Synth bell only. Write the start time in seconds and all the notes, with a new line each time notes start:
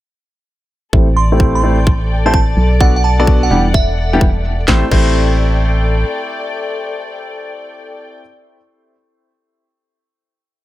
1.17 C6
1.55 C6
2.26 A5
2.34 A5
2.81 F#5
2.96 F#5
3.04 A5
3.20 A5
3.43 F#5
3.51 F#5
3.74 E5